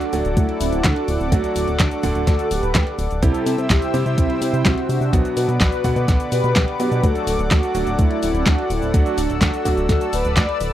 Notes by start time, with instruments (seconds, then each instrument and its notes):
Already playing: grand piano D4, analog polysynth D4 F#4, analog synth pad A4 D5 F#5 D6
0.01 closed hi-hat, cabasa
0.13 analog synth bass D1, grand piano F#3 A3 D4 F#4, open hi-hat, cabasa
0.25 analog synth bass D1, closed hi-hat, cabasa
0.37 analog synth bass D2, analog polysynth A3 E4, kick, closed hi-hat, cabasa
0.49 closed hi-hat
0.60 analog synth bass D1, analog polysynth C4 E4, open hi-hat, cabasa
0.72 analog synth bass D1, closed hi-hat, cabasa
0.84 analog synth bass D2, analog polysynth D4 F#4, kick, snare, clap, closed hi-hat, cabasa
0.96 closed hi-hat
1.08 analog synth bass D1, analog polysynth C4 E4, open hi-hat, cabasa
1.20 analog synth bass D1, cabasa
1.32 analog synth bass D2, grand piano F#3 A3 D4 F#4, analog polysynth D4 F#4, kick, closed hi-hat, cabasa
1.44 closed hi-hat, cabasa
1.56 analog synth bass D1, open hi-hat, cabasa
1.68 analog synth bass D1, closed hi-hat, cabasa
1.79 analog synth bass D2, analog polysynth D4 F#4, kick, snare, clap, closed hi-hat, cabasa
1.91 closed hi-hat, cabasa
2.03 analog synth bass D1, grand piano D3 A3 D4 F#5, kick, open hi-hat, cabasa
2.15 analog synth bass D1, closed hi-hat, cabasa
2.27 analog synth bass D2, analog polysynth F#4 A4, kick, snare, closed hi-hat, cabasa
2.39 closed hi-hat, cabasa
2.51 analog synth bass D1, analog polysynth G4 B4, open hi-hat, cabasa
2.63 analog synth bass D1, closed hi-hat, cabasa
2.75 analog synth bass D2, kick, snare, clap, closed hi-hat, cabasa
2.87 closed hi-hat
2.99 analog synth bass D1, open hi-hat, cabasa
3.11 analog synth bass D1, closed hi-hat, cabasa
3.22 analog synth bass C2, grand piano C3 G3 C4 E4 G4, analog polysynth E4 A4, analog synth pad C5 E5 G5 E6, kick, closed hi-hat, cabasa
3.34 closed hi-hat, cabasa
3.46 analog synth bass C3, open hi-hat, cabasa
3.58 analog synth bass C3, closed hi-hat, cabasa
3.69 analog synth bass C2, analog polysynth E4 G4, kick, snare, clap, closed hi-hat, cabasa
3.82 closed hi-hat, cabasa
3.94 analog synth bass C3, grand piano C3 G3 C4 E4 G4, open hi-hat, cabasa
4.06 analog synth bass C3, closed hi-hat, cabasa
4.17 analog synth bass C2, analog polysynth C4 E4, kick, closed hi-hat, cabasa
4.30 closed hi-hat
4.41 analog synth bass C3, analog polysynth C4 E4, open hi-hat, cabasa
4.53 analog synth bass C3, closed hi-hat, cabasa
4.65 analog synth bass C2, analog polysynth C4 F#4, kick, snare, clap, closed hi-hat, cabasa
4.78 closed hi-hat
4.89 analog synth bass C3, analog polysynth D4 F#4, open hi-hat, cabasa
5.01 analog synth bass C3, cabasa
5.13 analog synth bass B1, grand piano B2 F#3 B3 D4 F#4, analog synth pad B4 D5 F#5 D6, kick, closed hi-hat, cabasa
5.25 closed hi-hat, cabasa
5.36 analog synth bass B2, analog polysynth F#4 A4, open hi-hat, cabasa
5.48 analog synth bass B2, closed hi-hat, cabasa
5.60 analog synth bass B1, analog polysynth F#4 B4, kick, snare, clap, closed hi-hat, cabasa
5.72 closed hi-hat, cabasa
5.84 grand piano B2 D3 B3 D4 F#5, analog synth bass B2, kick, open hi-hat, cabasa
5.96 analog synth bass B2, closed hi-hat, cabasa
6.08 analog synth bass B1, kick, snare, closed hi-hat, cabasa
6.20 closed hi-hat, cabasa
6.32 analog synth bass B2, analog polysynth G4 B4, open hi-hat, cabasa
6.44 analog synth bass B2, closed hi-hat, cabasa
6.56 analog synth bass B1, kick, snare, clap, closed hi-hat, cabasa
6.68 closed hi-hat
6.80 analog synth bass B2, grand piano F#3 B3 D4 F#4, analog polysynth G4 B4, open hi-hat, cabasa
6.91 analog synth bass B2, closed hi-hat, cabasa
7.03 analog synth bass D2, grand piano F#3 A3 D4 F#4, analog polysynth F#4 A4, analog synth pad A4, kick, closed hi-hat, cabasa
7.15 closed hi-hat, cabasa
7.27 analog synth bass D1, open hi-hat, cabasa
7.39 analog synth bass D1, closed hi-hat, cabasa
7.51 analog synth bass D2, analog polysynth D4 F#4, kick, snare, clap, closed hi-hat, cabasa
7.63 closed hi-hat, cabasa
7.75 analog synth bass D1, grand piano F#3 A3 D4 F#4, open hi-hat, cabasa
7.87 analog synth bass D1, closed hi-hat, cabasa
7.99 analog synth bass D2, analog polysynth A3 E4, kick, closed hi-hat, cabasa
8.11 closed hi-hat
8.22 analog synth bass D1, analog polysynth C4 E4, open hi-hat, cabasa
8.34 analog synth bass D1, closed hi-hat, cabasa
8.46 analog synth bass D2, analog polysynth D4 F#4, kick, snare, clap, closed hi-hat, cabasa
8.58 closed hi-hat
8.70 analog synth bass D1, analog polysynth C4 E4, open hi-hat, cabasa
8.82 analog synth bass D1, cabasa
8.94 analog synth bass D2, grand piano F#3 A3 D4 F#4, analog polysynth D4 F#4, analog synth pad E6, kick, closed hi-hat, cabasa
9.06 closed hi-hat, cabasa
9.18 analog synth bass D1, open hi-hat, cabasa
9.29 analog synth bass D1, closed hi-hat, cabasa
9.41 analog synth bass D2, analog polysynth D4 F#4, kick, snare, clap, closed hi-hat, cabasa
9.54 closed hi-hat, cabasa
9.65 analog synth bass D1, grand piano F#3 A3 D4 F#4, kick, open hi-hat, cabasa
9.77 analog synth bass D1, closed hi-hat, cabasa
9.89 analog synth bass D2, analog polysynth F#4 A4, kick, snare, closed hi-hat, cabasa
10.01 closed hi-hat, cabasa
10.13 analog synth bass D1, analog polysynth B4 D5, open hi-hat, cabasa
10.25 analog synth bass D1, closed hi-hat, cabasa
10.37 analog synth bass D2, kick, snare, clap, closed hi-hat, cabasa
10.49 closed hi-hat
10.60 analog synth bass D1, open hi-hat, cabasa